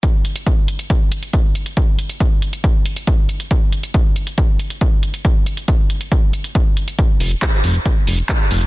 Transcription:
<<
  \new Staff \with { instrumentName = "Analog synth bass" } { \clef bass \time 4/4 \key f \mixolydian \tempo 4 = 138 r1 | r1 | r1 | r1 |
r8 f,,8 r8 f,,8 r8 f,,8 r8 f,,8 | }
  \new DrumStaff \with { instrumentName = "Drums" } \drummode { \time 4/4 <hh bd>8 hh16 hh16 <hh bd>8 hh16 hh16 <hh bd>8 hh16 hh16 <hh bd>8 hh16 hh16 | <hh bd>8 hh16 hh16 <hh bd>8 hh16 hh16 <hh bd>8 hh16 hh16 <hh bd>8 hh16 hh16 | <hh bd>8 hh16 hh16 <hh bd>8 hh16 hh16 <hh bd>8 hh16 hh16 <hh bd>8 hh16 hh16 | <hh bd>8 hh16 hh16 <hh bd>8 hh16 hh16 <hh bd>8 hh16 hh16 <hh bd>8 hh16 hh16 |
<hh bd>8 hho16 hh16 <hc hh bd>8 hho16 hh16 <hh bd>8 hho16 hh16 <hc hh bd>8 hho16 hh16 | }
>>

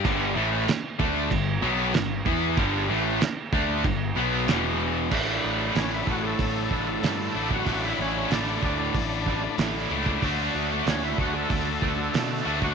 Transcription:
<<
  \new Staff \with { instrumentName = "Tonewheel organ" } { \time 4/4 \key g \lydian \tempo 4 = 94 r1 | r1 | r4 cis'16 e'16 fis'16 <gis' a'>2 fis'16~ | fis'16 e'16 cis'8 d'2 r4 |
r4 cis'16 e'16 fis'16 <gis' a'>2 fis'16 | }
  \new Staff \with { instrumentName = "Overdriven electric guitar" } { \time 4/4 \key g \lydian <g, d g>8 <a, e a>8 r8 <d a d'>8 <g, d>8 <b, fis b>8 <g, d>8 <e b e'>8 | <g, d g>8 <a, e a>8 r8 <d a d'>8 <g, d>8 <b, fis b>8 <e, b, e>4 | <a, d a d' e'>8. <a d' e'>16 <a, d a d' e'>8 <d a d' e'>8. r16 <d a d' e'>8 <a, d a d' e'>16 <a d' e'>16 <d a d' e'>16 <a d' e'>16 | <a, d a d' e'>8. <a d' e'>16 <a, d a d' e'>8 <d a d' e'>8. r16 <d a d' e'>8 <a, d a d' e'>16 <a d' e'>16 <d a d' e'>16 <a d' e'>16 |
<d a d' fis'>8. <a d' fis'>16 <d a d' fis'>8 <d a d' fis'>8. r16 <d a d' fis'>8 <d a d' fis'>16 <a d' fis'>16 <d a d' fis'>16 <a d' fis'>16 | }
  \new Staff \with { instrumentName = "Distorted electric guitar" } { \clef bass \time 4/4 \key g \lydian <g, d g>8 <a, e a>8 r8 <d a d'>8 <g, d>8 <b, fis b>8 <g, d>8 <e b e'>8 | <g, d g>8 <a, e a>8 r8 <d a d'>8 <g, d>8 <b, fis b>8 <e, b, e>4 | <a, d a d' e'>2.~ <a, d a d' e'>8 <a, d a d' e'>8 | <a, d a d' e'>2.~ <a, d a d' e'>8 <a, d a d' e'>8 |
<d a d' fis'>2.~ <d a d' fis'>8 <d a d' fis'>8 | }
  \new Staff \with { instrumentName = "Picked electric bass" } { \clef bass \time 4/4 \key g \lydian g,,8 a,,8 r8 d,8 g,,8 b,,8 g,,8 e,8 | g,,8 a,,8 r8 d,8 g,,8 b,,8 e,,4 | a,,8 a,,8 a,,8 a,,8 a,,8 a,,8 g,8 a,,8 | a,,8 a,,8 a,,8 d,8 a,,4 a,,8 cis,8 |
d,8 d,8 d,8 d,8 d,8 d,8 b,8 d,8 | }
  \new DrumStaff \with { instrumentName = "Drums" } \drummode { \time 4/4 <cymc bd>4 <cymc sn>8 bd8 <cymc bd>4 <cymc sn>8 bd8 | <cymc bd>4 <cymc sn>8 bd8 <cymc bd>4 <cymc sn>4 | <cymc bd>4 <hho sn>8 bd8 <hho bd>8 bd8 <hho sn>8. bd16 | <hho bd>4 <hho sn>8 bd8 <hho bd>8 bd8 <hho sn>8. bd16 |
<hho bd>4 <hho sn>8 bd8 <hho bd>8 bd8 <hho sn>8. bd16 | }
>>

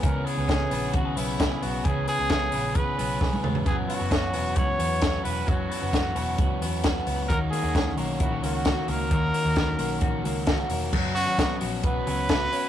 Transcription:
<<
  \new Staff \with { instrumentName = "Trumpet" } { \time 4/4 \key fis \mixolydian \tempo 4 = 132 ais'8 gis'4. fis'8 e'4 fis'8 | gis'8 gis'4. b'4. r8 | gis'8 fis'4. cis''4. b'8 | fis'2. r4 |
ais'8 gis'4 r8 fis'8 fis'4 ais'8~ | ais'2. r4 | r8 fis'4 r8 b'2 | }
  \new Staff \with { instrumentName = "Clean electric guitar" } { \time 4/4 \key fis \mixolydian <cis b cis' gis'>8 b8 cis'8 b8 fis'16 gis'16 b8 fis'16 gis'16 b8 | cis8 b8 cis'8 b8 gis'8 b8 gis'8 b8 | fis,8 b8 cis'8 b8 fis'8 b8 e'16 fis'16 b8 | fis,8 b8 b16 cis'16 b8 fis'8 b8 fis'8 b8 |
dis8 ais8 cis'8 ais8 e'16 fis'16 ais8 fis'8 ais8 | dis8 ais8 b16 cis'16 ais8 fis'8 ais8 fis'8 ais8 | <fis fis'>8 cis'8 b8 fis'8 b8 cis'8 fis'8 cis'8 | }
  \new Staff \with { instrumentName = "Overdriven electric guitar" } { \time 4/4 \key fis \mixolydian <e b cis' gis'>8. <cis e b cis' gis'>8. <cis e b cis' gis'>4 <e b cis' gis'>8. <cis e b cis' gis'>8. | <e b cis' gis'>8. <cis e b cis' gis'>8. <cis e b cis' gis'>4 <e b cis' gis'>8. <cis e b cis' gis'>8. | <e b cis' fis'>8. <fis, cis e b cis' fis'>8. <fis, cis e b cis' fis'>4 <e b cis' fis'>8. <fis, cis e b cis' fis'>8. | <e b cis' fis'>8. <fis, cis e b cis' fis'>8. <fis, cis e b cis' fis'>4 <e b cis' fis'>8. <fis, cis e b cis' fis'>8. |
<fis ais cis' fis'>8. <dis fis ais cis' fis'>8. <dis fis ais cis' fis'>4 <fis ais cis' fis'>8. <dis fis ais cis' fis'>8. | <fis ais cis' fis'>8. <dis fis ais cis' fis'>8. <dis fis ais cis' fis'>4 <fis ais cis' fis'>8. <dis fis ais cis' fis'>8. | <fis, cis fis b cis' fis'>8. <fis b cis' fis'>8. <fis b cis' fis'>8 <fis b cis' fis'>8 <fis b cis' fis'>8 <fis b cis' fis'>4 | }
  \new Staff \with { instrumentName = "Picked electric bass" } { \clef bass \time 4/4 \key fis \mixolydian cis,8 r16 cis,8. ais,,8 gis,,8 b,,4 b,,8 | cis,8 r16 cis,8. ais,,8 gis,,8 b,,4 e,,8 | fis,,8 r16 fis,,8. e,,8 cis,8 e,4 e,,8 | fis,,8 r16 fis,,8. e,,8 cis,8 e,4 cis,8 |
dis,8 r16 dis,8. b,,8 ais,,8 cis,4 cis,8 | dis,8 r16 dis,8. b,,8 ais,,8 cis,4 e,,8 | fis,,8. gis,,8. ais,,8 b,,8 cis,4 r8 | }
  \new DrumStaff \with { instrumentName = "Drums" } \drummode { \time 4/4 <hh bd>8 hho8 <hh bd sn>8 hho8 <hh bd>8 hho8 <hh bd sn>8 hho8 | <hh bd>8 hho8 <hh bd sn>8 hho8 <hh bd>8 hho8 <bd sn>16 tommh16 toml16 tomfh16 | <hh bd>8 hho8 <hh bd sn>8 hho8 <hh bd>8 hho8 <hh bd sn>8 hho8 | <hh bd>8 hho8 <hh bd sn>8 hho8 <hh bd>8 hho8 <hh bd sn>8 hho8 |
<hh bd>8 hho8 <hh bd sn>8 hho8 <hh bd>8 hho8 <hh bd sn>8 hho8 | <hh bd>8 hho8 <hh bd sn>8 hho8 <hh bd>8 hho8 <hh bd sn>8 hho8 | <cymc bd>8 hho8 <hh bd sn>8 hho8 <hh bd>8 hho8 <hh bd sn>8 hho8 | }
>>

